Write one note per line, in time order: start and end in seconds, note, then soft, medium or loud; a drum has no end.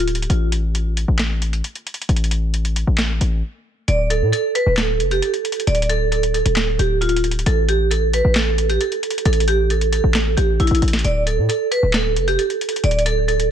0.00 0.27 D1 loud
0.00 closed hi-hat medium
0.08 closed hi-hat medium
0.15 closed hi-hat medium
0.22 closed hi-hat medium
0.30 1.05 A1 loud
0.30 closed hi-hat medium
0.52 closed hi-hat medium
0.75 closed hi-hat medium
0.97 closed hi-hat medium
1.08 1.62 A1 loud
1.19 snare loud
1.19 clap loud
1.19 closed hi-hat medium
1.42 closed hi-hat medium
1.53 closed hi-hat soft
1.64 closed hi-hat medium
1.75 closed hi-hat soft
1.87 closed hi-hat medium
1.94 closed hi-hat medium
2.02 closed hi-hat medium
2.09 2.84 A1 loud
2.09 closed hi-hat medium
2.16 closed hi-hat medium
2.24 closed hi-hat medium
2.31 closed hi-hat medium
2.54 closed hi-hat medium
2.65 closed hi-hat medium
2.76 closed hi-hat medium
2.87 3.20 A1 loud
2.98 snare loud
2.98 clap loud
2.98 closed hi-hat medium
3.21 3.42 A1 loud
3.21 closed hi-hat medium
3.88 4.23 D1 loud
3.88 4.05 D5 medium
3.88 closed hi-hat medium
4.10 4.27 A4 medium
4.10 closed hi-hat medium
4.22 4.32 A2 loud
4.33 4.50 A4 medium
4.33 closed hi-hat medium
4.55 4.72 B4 medium
4.55 closed hi-hat medium
4.66 5.02 D1 loud
4.77 5.09 A4 loud
4.77 snare loud
4.77 clap loud
4.77 closed hi-hat medium
5.00 5.21 F1 loud
5.00 closed hi-hat medium
5.11 5.20 G4 medium
5.11 closed hi-hat soft
5.22 5.65 A4 medium
5.22 closed hi-hat medium
5.34 closed hi-hat soft
5.45 closed hi-hat medium
5.52 closed hi-hat medium
5.60 closed hi-hat medium
5.67 6.42 D1 loud
5.67 5.84 D5 medium
5.67 closed hi-hat medium
5.75 closed hi-hat medium
5.82 closed hi-hat medium
5.90 6.07 A4 medium
5.90 closed hi-hat medium
6.12 6.29 A4 medium
6.12 closed hi-hat medium
6.23 closed hi-hat medium
6.34 6.76 A4 medium
6.34 closed hi-hat medium
6.46 6.78 D1 loud
6.46 closed hi-hat medium
6.56 snare loud
6.56 clap loud
6.56 closed hi-hat medium
6.79 7.44 D1 loud
6.79 6.96 G4 medium
6.79 closed hi-hat medium
7.01 7.18 F4 medium
7.01 closed hi-hat medium
7.09 closed hi-hat medium
7.16 closed hi-hat medium
7.24 closed hi-hat medium
7.31 closed hi-hat medium
7.39 closed hi-hat medium
7.46 8.22 A1 loud
7.46 7.63 A4 medium
7.46 closed hi-hat medium
7.69 7.86 G4 medium
7.69 closed hi-hat medium
7.91 8.08 A4 medium
7.91 closed hi-hat medium
8.13 8.31 B4 medium
8.13 closed hi-hat medium
8.25 8.78 A1 loud
8.35 8.68 A4 medium
8.35 snare loud
8.35 clap loud
8.35 closed hi-hat medium
8.58 closed hi-hat medium
8.69 8.78 G4 medium
8.69 closed hi-hat soft
8.81 9.23 A4 medium
8.81 closed hi-hat medium
8.92 closed hi-hat soft
9.03 closed hi-hat medium
9.11 closed hi-hat medium
9.18 closed hi-hat medium
9.25 10.01 A1 loud
9.25 9.42 A4 medium
9.25 closed hi-hat medium
9.33 closed hi-hat medium
9.40 closed hi-hat medium
9.48 9.65 G4 medium
9.48 closed hi-hat medium
9.70 9.87 A4 medium
9.70 closed hi-hat medium
9.81 closed hi-hat medium
9.93 10.35 A4 medium
9.93 closed hi-hat medium
10.04 10.36 A1 loud
10.14 snare loud
10.14 clap loud
10.14 closed hi-hat medium
10.37 10.59 A1 loud
10.37 10.54 G4 medium
10.37 closed hi-hat medium
10.60 10.71 A1 loud
10.60 10.77 E4 medium
10.60 closed hi-hat soft
10.67 10.82 A1 loud
10.67 closed hi-hat medium
10.75 closed hi-hat medium
10.82 11.04 A1 loud
10.82 closed hi-hat soft
10.82 open hi-hat medium
10.88 closed hi-hat medium
10.93 snare loud
10.93 closed hi-hat medium
10.99 closed hi-hat medium
11.04 11.40 D1 loud
11.04 11.21 D5 medium
11.04 closed hi-hat medium
11.27 11.44 A4 medium
11.27 closed hi-hat medium
11.38 11.49 A2 loud
11.49 11.66 A4 medium
11.49 closed hi-hat medium
11.72 11.89 B4 medium
11.72 closed hi-hat medium
11.83 12.18 D1 loud
11.93 12.26 A4 loud
11.93 snare loud
11.93 clap loud
11.93 closed hi-hat medium
12.16 12.38 F1 loud
12.16 closed hi-hat medium
12.28 12.36 G4 medium
12.28 closed hi-hat soft
12.39 12.81 A4 medium
12.39 closed hi-hat medium
12.50 closed hi-hat soft
12.61 closed hi-hat medium
12.69 closed hi-hat medium
12.76 closed hi-hat medium
12.84 13.51 D1 loud
12.84 13.01 D5 loud
12.84 closed hi-hat medium
12.91 closed hi-hat medium
12.99 closed hi-hat medium
13.06 13.23 A4 medium
13.06 closed hi-hat medium
13.28 13.45 A4 medium
13.28 closed hi-hat medium
13.40 closed hi-hat medium